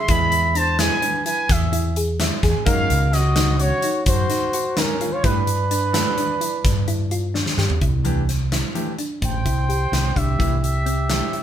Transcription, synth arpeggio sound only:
0.09 0.46 E4 medium
0.55 0.74 D4 medium
0.79 0.98 E4 medium
1.02 1.21 D4 medium
1.26 1.64 E4 medium
1.72 1.91 E4 medium
1.97 2.15 G#4 medium
2.20 2.39 E4 medium
2.43 2.62 G#4 medium
2.66 3.04 D#4 loud
3.14 3.32 C#4 medium
3.36 3.55 D#4 loud
3.60 3.79 C#4 medium
3.84 4.21 D#4 medium
4.30 4.49 D#4 medium
4.54 4.73 F#4 medium
4.78 4.96 D#4 medium
5.01 5.20 F4 medium
5.24 5.62 E4 medium
5.71 5.90 D4 medium
5.94 6.13 E4 medium
6.18 6.36 D4 medium
6.41 6.78 E4 medium
6.88 7.06 E4 medium
7.11 7.30 F4 medium
7.34 7.53 D4 medium
7.59 7.77 G4 medium
7.82 8.19 E4 medium
8.29 8.47 C4 medium
8.52 8.71 E4 medium
8.75 8.94 E4 medium
8.99 9.36 D4 medium
9.45 9.64 E4 medium
9.69 9.88 G4 medium
9.93 10.11 E4 medium
10.16 10.34 D4 medium
10.39 10.77 E4 medium
10.86 11.05 C4 medium
11.10 11.29 E4 medium
11.34 11.43 E4 medium

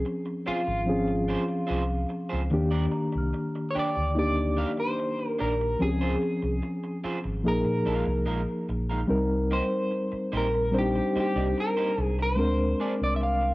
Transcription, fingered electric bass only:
0.48 muted fingered electric bass stroke soft
0.68 1.34 G#1 medium
1.70 2.03 C2 medium
2.33 2.49 C#2 medium
2.53 2.86 D#2 medium
3.15 3.31 C2 medium
3.76 muted fingered electric bass stroke soft
3.97 4.63 D2 medium
5.41 5.74 A#1 medium
5.81 6.14 C#2 medium
6.43 6.59 C2 medium
7.04 muted fingered electric bass stroke soft
7.25 7.41 G#1 medium
7.46 7.62 A#1 medium
7.65 7.82 A#2 medium
7.86 8.03 A#1 medium
8.07 8.27 C2 medium
8.27 8.44 A#1 medium
8.69 9.02 A#1 medium
9.10 9.59 C2 medium
10.13 muted fingered electric bass stroke soft
10.33 10.99 A#1 medium
11.16 muted fingered electric bass stroke soft
11.36 11.52 C2 medium
11.98 12.39 C2 medium
12.39 12.72 D2 medium
13.01 13.54 C2 medium

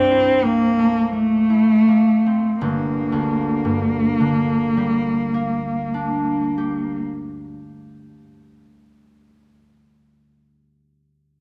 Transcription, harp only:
0.00 1.47 C2 medium
0.00 2.68 G2 soft
0.00 0.43 A#3 medium
0.00 2.25 C4 medium
0.00 0.67 D4 medium
0.11 1.49 E4 soft
0.44 1.12 A#3 soft
0.78 1.38 A3 soft
1.13 1.87 A#3 soft
1.50 2.68 E4 soft
1.88 5.33 A#3 soft
2.26 2.68 C4 soft
2.61 7.04 G1 medium
3.12 7.55 D2 soft
3.65 8.07 G2 medium
4.20 8.62 D3 soft
4.77 9.19 G3 medium
5.34 9.73 A#3 medium
5.94 9.73 D4 soft
6.58 9.73 G4 soft

